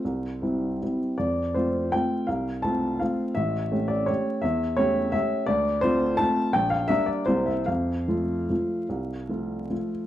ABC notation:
X:1
M:3/4
L:1/8
Q:1/4=163
K:F
V:1 name="Upright piano"
c4- c z | d2 c2 g2 | f2 a2 f2 | e3 d ^c2 |
e2 ^c2 e2 | d2 c2 a2 | g f e d c e | f6- |
f4- f z |]
V:2 name="Upright piano"
C,,2 [G,CE]2 [G,CE]2 | F,,2 [A,CF]2 [A,CF]2 | C,,2 [A,CF]2 [A,CF]2 | A,,,2 [A,^CG]2 [A,CG]2 |
E,,2 [A,^CG]2 [A,CG]2 | D,,2 [A,CF]2 [A,CF]2 | B,,,2 [G,B,D]2 [C,,G,B,E]2 | F,,2 [F,A,F]2 [F,A,F]2 |
C,,2 [F,A,F]2 [F,A,F]2 |]